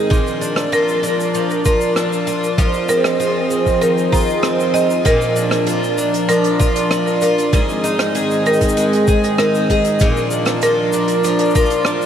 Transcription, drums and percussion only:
0.11 kick, shaker
0.27 shaker
0.43 shaker
0.56 cross-stick, shaker
0.73 shaker
0.88 shaker
1.04 shaker
1.20 shaker
1.34 shaker
1.50 shaker
1.65 kick, shaker
1.81 shaker
1.96 cross-stick, shaker
2.13 shaker
2.28 shaker
2.44 shaker
2.58 kick, shaker
2.73 shaker
2.89 shaker
3.04 cross-stick, shaker
3.21 shaker
3.51 shaker
3.66 kick, shaker
3.83 shaker
3.98 shaker
4.13 kick, shaker
4.17 shaker
4.19 shaker
4.24 shaker
4.27 shaker
4.30 shaker
4.43 cross-stick, shaker
4.60 shaker
4.75 shaker
4.90 shaker
5.05 kick, closed hi-hat, shaker
5.21 shaker
5.37 shaker
5.51 cross-stick, closed hi-hat, shaker
5.67 closed hi-hat, shaker
5.84 shaker
5.98 shaker
6.14 closed hi-hat, shaker
6.29 closed hi-hat, shaker
6.44 closed hi-hat, shaker
6.60 kick, shaker
6.76 closed hi-hat, shaker
6.91 cross-stick, shaker
7.07 shaker
7.21 closed hi-hat, shaker
7.38 closed hi-hat, shaker
7.53 kick, closed hi-hat, shaker
7.69 shaker
7.85 shaker
7.99 cross-stick, closed hi-hat, shaker
8.15 closed hi-hat, shaker
8.31 shaker
8.46 shaker
8.53 shaker
8.61 kick, closed hi-hat, shaker
8.69 shaker
8.77 closed hi-hat, shaker
8.93 closed hi-hat, shaker
9.08 kick, shaker
9.24 closed hi-hat, shaker
9.38 cross-stick, shaker
9.55 shaker
9.70 kick, closed hi-hat
9.85 closed hi-hat, shaker
10.00 kick, closed hi-hat, shaker
10.17 shaker
10.31 shaker
10.45 cross-stick, closed hi-hat, shaker
10.61 closed hi-hat, shaker
10.93 shaker
11.08 closed hi-hat, shaker
11.24 closed hi-hat, shaker
11.39 closed hi-hat, shaker
11.45 shaker
11.50 shaker
11.55 kick, shaker
11.60 shaker
11.65 shaker
11.70 closed hi-hat, shaker
11.85 cross-stick, shaker
12.02 shaker

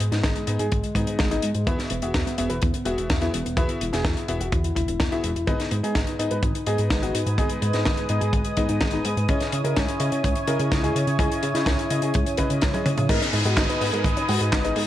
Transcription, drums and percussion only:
0.00 closed hi-hat
0.12 snare, closed hi-hat
0.23 kick, snare, closed hi-hat
0.36 closed hi-hat
0.47 closed hi-hat
0.59 closed hi-hat
0.72 kick, closed hi-hat
0.84 closed hi-hat
0.95 kick, closed hi-hat
1.07 closed hi-hat
1.19 kick, snare, closed hi-hat
1.31 closed hi-hat
1.42 closed hi-hat
1.54 closed hi-hat
1.67 kick, closed hi-hat
1.79 snare, closed hi-hat
1.90 closed hi-hat
2.02 closed hi-hat
2.14 kick, snare, closed hi-hat
2.27 closed hi-hat
2.38 closed hi-hat
2.50 closed hi-hat
2.62 kick, closed hi-hat
2.74 closed hi-hat
2.86 closed hi-hat
2.98 closed hi-hat
3.10 kick, snare, closed hi-hat
3.22 closed hi-hat
3.34 closed hi-hat
3.46 closed hi-hat
3.57 kick, closed hi-hat
3.69 closed hi-hat
3.81 closed hi-hat
3.93 snare, closed hi-hat
4.05 kick, snare, closed hi-hat
4.17 closed hi-hat
4.28 closed hi-hat
4.41 closed hi-hat
4.52 kick, closed hi-hat
4.64 closed hi-hat
4.76 kick, closed hi-hat
4.88 closed hi-hat
5.00 kick, snare, closed hi-hat
5.12 closed hi-hat
5.24 closed hi-hat
5.36 closed hi-hat
5.47 kick, closed hi-hat
5.60 snare, closed hi-hat
5.71 closed hi-hat
5.84 closed hi-hat
5.95 kick, snare, closed hi-hat
6.07 closed hi-hat
6.20 closed hi-hat
6.31 closed hi-hat
6.43 kick, closed hi-hat
6.55 closed hi-hat
6.67 closed hi-hat
6.78 closed hi-hat
6.90 kick, snare, closed hi-hat
7.03 closed hi-hat
7.15 closed hi-hat
7.26 closed hi-hat
7.38 kick, closed hi-hat
7.49 closed hi-hat
7.62 closed hi-hat
7.73 snare, closed hi-hat
7.85 kick, snare, closed hi-hat
7.97 closed hi-hat
8.09 closed hi-hat
8.21 closed hi-hat
8.33 kick, closed hi-hat
8.45 closed hi-hat
8.57 kick, closed hi-hat
8.69 closed hi-hat
8.80 kick, snare, closed hi-hat
8.91 closed hi-hat
9.05 closed hi-hat
9.17 closed hi-hat
9.29 kick, closed hi-hat
9.40 snare, closed hi-hat
9.52 closed hi-hat
9.65 closed hi-hat
9.77 kick, snare, closed hi-hat
9.88 closed hi-hat
10.00 closed hi-hat
10.12 closed hi-hat
10.24 kick, closed hi-hat
10.35 closed hi-hat
10.47 closed hi-hat
10.59 closed hi-hat
10.72 kick, snare, closed hi-hat
10.84 closed hi-hat
10.96 closed hi-hat
11.07 closed hi-hat
11.19 kick, closed hi-hat
11.32 closed hi-hat
11.43 closed hi-hat
11.55 snare, closed hi-hat
11.66 kick, snare, closed hi-hat
11.79 closed hi-hat
11.90 closed hi-hat
12.02 closed hi-hat
12.14 kick, closed hi-hat
12.26 closed hi-hat
12.37 kick, closed hi-hat
12.50 closed hi-hat
12.61 kick, snare, closed hi-hat
12.74 closed hi-hat, high tom
12.86 closed hi-hat, mid tom
12.97 closed hi-hat, mid tom
13.09 kick, closed hi-hat, crash
13.22 snare, closed hi-hat
13.33 open hi-hat
13.45 closed hi-hat
13.57 kick, snare, clap, closed hi-hat
13.70 closed hi-hat
13.81 open hi-hat
13.94 closed hi-hat
14.04 kick, closed hi-hat
14.17 closed hi-hat
14.29 open hi-hat
14.41 closed hi-hat
14.53 kick, snare, clap, closed hi-hat
14.65 closed hi-hat
14.76 open hi-hat

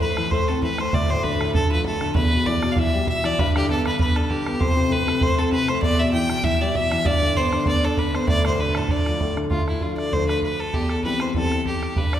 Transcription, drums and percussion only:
0.00 bodhran
0.17 bodhran
0.32 bodhran
0.62 bodhran
0.78 bodhran
0.93 bodhran
1.24 bodhran
1.41 bodhran
1.55 bodhran
1.84 bodhran
2.01 bodhran
2.15 bodhran
2.46 bodhran
2.63 bodhran
2.77 bodhran
3.07 bodhran
3.24 bodhran
3.39 bodhran
3.56 bodhran
3.69 bodhran
3.86 bodhran
3.99 bodhran
4.16 bodhran
4.30 bodhran
4.46 bodhran
4.61 bodhran
4.91 bodhran
5.08 bodhran
5.21 bodhran
5.52 bodhran
5.68 bodhran
5.83 bodhran
6.13 bodhran
6.30 bodhran
6.44 bodhran
6.75 bodhran
6.92 bodhran
7.06 bodhran
7.36 bodhran
7.53 bodhran
7.66 bodhran
7.97 bodhran
8.15 bodhran
8.28 bodhran
8.45 bodhran
8.58 bodhran
8.75 bodhran
8.89 bodhran
9.06 bodhran
9.21 bodhran
9.37 bodhran
9.51 bodhran
9.68 bodhran
9.81 bodhran
9.98 bodhran
10.13 bodhran
10.29 bodhran
10.42 bodhran
10.74 bodhran
10.89 bodhran
11.03 bodhran
11.20 bodhran
11.34 bodhran
11.52 bodhran
11.66 bodhran
11.83 bodhran
11.96 bodhran
12.13 bodhran

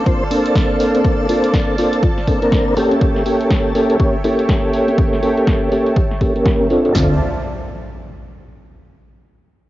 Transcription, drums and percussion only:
0.06 kick, closed hi-hat
0.31 open hi-hat
0.46 closed hi-hat
0.55 kick, snare, closed hi-hat
0.80 open hi-hat
0.95 closed hi-hat
1.05 kick, closed hi-hat
1.29 open hi-hat
1.44 closed hi-hat
1.54 kick, snare, closed hi-hat
1.78 open hi-hat
1.93 closed hi-hat
2.03 kick, closed hi-hat
2.18 snare
2.28 kick, open hi-hat
2.42 closed hi-hat
2.52 kick, snare, closed hi-hat
2.77 open hi-hat
2.91 closed hi-hat
3.01 kick, closed hi-hat
3.16 snare
3.26 open hi-hat
3.41 closed hi-hat
3.51 kick, snare, closed hi-hat
3.75 open hi-hat
3.90 closed hi-hat
4.00 kick, closed hi-hat
4.24 open hi-hat
4.39 closed hi-hat
4.49 kick, snare, closed hi-hat
4.73 open hi-hat
4.88 closed hi-hat
4.98 kick, closed hi-hat
5.13 snare
5.23 open hi-hat
5.37 closed hi-hat
5.47 kick, snare, closed hi-hat
5.72 open hi-hat
5.86 closed hi-hat
5.96 kick, closed hi-hat
6.11 snare
6.21 kick, open hi-hat
6.36 closed hi-hat
6.46 kick, snare
6.70 open hi-hat
6.85 closed hi-hat
6.95 kick, snare

